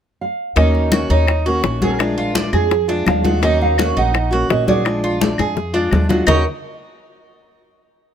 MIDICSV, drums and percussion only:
0, 0, Header, 1, 2, 480
1, 0, Start_track
1, 0, Key_signature, -6, "minor"
1, 0, Tempo, 356083
1, 767, Time_signature, 4, 2, 24, 8
1, 10977, End_track
2, 0, Start_track
2, 0, Title_t, "Drums"
2, 767, Note_on_c, 9, 63, 34
2, 768, Note_on_c, 9, 60, 68
2, 902, Note_off_c, 9, 63, 0
2, 903, Note_off_c, 9, 60, 0
2, 1008, Note_on_c, 9, 63, 31
2, 1143, Note_off_c, 9, 63, 0
2, 1237, Note_on_c, 9, 63, 83
2, 1241, Note_on_c, 9, 75, 62
2, 1254, Note_on_c, 9, 60, 54
2, 1371, Note_off_c, 9, 63, 0
2, 1376, Note_off_c, 9, 75, 0
2, 1389, Note_off_c, 9, 60, 0
2, 1485, Note_on_c, 9, 63, 30
2, 1619, Note_off_c, 9, 63, 0
2, 1718, Note_on_c, 9, 75, 60
2, 1728, Note_on_c, 9, 63, 33
2, 1730, Note_on_c, 9, 60, 61
2, 1853, Note_off_c, 9, 75, 0
2, 1863, Note_off_c, 9, 63, 0
2, 1865, Note_off_c, 9, 60, 0
2, 1972, Note_on_c, 9, 63, 35
2, 2107, Note_off_c, 9, 63, 0
2, 2207, Note_on_c, 9, 60, 68
2, 2207, Note_on_c, 9, 61, 77
2, 2214, Note_on_c, 9, 63, 34
2, 2342, Note_off_c, 9, 60, 0
2, 2342, Note_off_c, 9, 61, 0
2, 2348, Note_off_c, 9, 63, 0
2, 2451, Note_on_c, 9, 63, 78
2, 2585, Note_off_c, 9, 63, 0
2, 2684, Note_on_c, 9, 75, 62
2, 2697, Note_on_c, 9, 60, 70
2, 2703, Note_on_c, 9, 63, 32
2, 2819, Note_off_c, 9, 75, 0
2, 2832, Note_off_c, 9, 60, 0
2, 2838, Note_off_c, 9, 63, 0
2, 2933, Note_on_c, 9, 60, 33
2, 2934, Note_on_c, 9, 63, 32
2, 3068, Note_off_c, 9, 60, 0
2, 3068, Note_off_c, 9, 63, 0
2, 3171, Note_on_c, 9, 63, 82
2, 3179, Note_on_c, 9, 60, 57
2, 3306, Note_off_c, 9, 63, 0
2, 3314, Note_off_c, 9, 60, 0
2, 3411, Note_on_c, 9, 75, 65
2, 3419, Note_on_c, 9, 60, 35
2, 3419, Note_on_c, 9, 63, 33
2, 3546, Note_off_c, 9, 75, 0
2, 3553, Note_off_c, 9, 60, 0
2, 3553, Note_off_c, 9, 63, 0
2, 3658, Note_on_c, 9, 60, 65
2, 3659, Note_on_c, 9, 63, 31
2, 3793, Note_off_c, 9, 60, 0
2, 3794, Note_off_c, 9, 63, 0
2, 3891, Note_on_c, 9, 63, 37
2, 3907, Note_on_c, 9, 60, 34
2, 4026, Note_off_c, 9, 63, 0
2, 4041, Note_off_c, 9, 60, 0
2, 4132, Note_on_c, 9, 63, 83
2, 4132, Note_on_c, 9, 75, 58
2, 4148, Note_on_c, 9, 60, 68
2, 4148, Note_on_c, 9, 61, 84
2, 4266, Note_off_c, 9, 63, 0
2, 4266, Note_off_c, 9, 75, 0
2, 4282, Note_off_c, 9, 60, 0
2, 4282, Note_off_c, 9, 61, 0
2, 4383, Note_on_c, 9, 63, 77
2, 4518, Note_off_c, 9, 63, 0
2, 4620, Note_on_c, 9, 60, 67
2, 4630, Note_on_c, 9, 63, 32
2, 4755, Note_off_c, 9, 60, 0
2, 4765, Note_off_c, 9, 63, 0
2, 4873, Note_on_c, 9, 63, 31
2, 5008, Note_off_c, 9, 63, 0
2, 5096, Note_on_c, 9, 75, 65
2, 5111, Note_on_c, 9, 60, 57
2, 5112, Note_on_c, 9, 63, 90
2, 5231, Note_off_c, 9, 75, 0
2, 5246, Note_off_c, 9, 60, 0
2, 5247, Note_off_c, 9, 63, 0
2, 5354, Note_on_c, 9, 63, 32
2, 5489, Note_off_c, 9, 63, 0
2, 5584, Note_on_c, 9, 75, 66
2, 5590, Note_on_c, 9, 60, 64
2, 5592, Note_on_c, 9, 63, 33
2, 5718, Note_off_c, 9, 75, 0
2, 5725, Note_off_c, 9, 60, 0
2, 5727, Note_off_c, 9, 63, 0
2, 5832, Note_on_c, 9, 63, 35
2, 5967, Note_off_c, 9, 63, 0
2, 6070, Note_on_c, 9, 63, 32
2, 6071, Note_on_c, 9, 60, 63
2, 6071, Note_on_c, 9, 61, 80
2, 6204, Note_off_c, 9, 63, 0
2, 6206, Note_off_c, 9, 60, 0
2, 6206, Note_off_c, 9, 61, 0
2, 6309, Note_on_c, 9, 63, 77
2, 6444, Note_off_c, 9, 63, 0
2, 6540, Note_on_c, 9, 75, 64
2, 6547, Note_on_c, 9, 63, 33
2, 6550, Note_on_c, 9, 60, 70
2, 6675, Note_off_c, 9, 75, 0
2, 6681, Note_off_c, 9, 63, 0
2, 6685, Note_off_c, 9, 60, 0
2, 6794, Note_on_c, 9, 60, 33
2, 6794, Note_on_c, 9, 63, 33
2, 6928, Note_off_c, 9, 63, 0
2, 6929, Note_off_c, 9, 60, 0
2, 7028, Note_on_c, 9, 60, 86
2, 7029, Note_on_c, 9, 63, 92
2, 7163, Note_off_c, 9, 60, 0
2, 7164, Note_off_c, 9, 63, 0
2, 7255, Note_on_c, 9, 75, 68
2, 7271, Note_on_c, 9, 63, 34
2, 7272, Note_on_c, 9, 60, 72
2, 7390, Note_off_c, 9, 75, 0
2, 7406, Note_off_c, 9, 63, 0
2, 7407, Note_off_c, 9, 60, 0
2, 7505, Note_on_c, 9, 61, 73
2, 7513, Note_on_c, 9, 63, 30
2, 7640, Note_off_c, 9, 61, 0
2, 7648, Note_off_c, 9, 63, 0
2, 7754, Note_on_c, 9, 63, 34
2, 7888, Note_off_c, 9, 63, 0
2, 7972, Note_on_c, 9, 75, 57
2, 7986, Note_on_c, 9, 63, 85
2, 7991, Note_on_c, 9, 61, 85
2, 8107, Note_off_c, 9, 75, 0
2, 8121, Note_off_c, 9, 63, 0
2, 8126, Note_off_c, 9, 61, 0
2, 8226, Note_on_c, 9, 63, 77
2, 8228, Note_on_c, 9, 61, 77
2, 8361, Note_off_c, 9, 63, 0
2, 8363, Note_off_c, 9, 61, 0
2, 8450, Note_on_c, 9, 75, 90
2, 8467, Note_on_c, 9, 61, 96
2, 8467, Note_on_c, 9, 64, 99
2, 8585, Note_off_c, 9, 75, 0
2, 8601, Note_off_c, 9, 61, 0
2, 8602, Note_off_c, 9, 64, 0
2, 10977, End_track
0, 0, End_of_file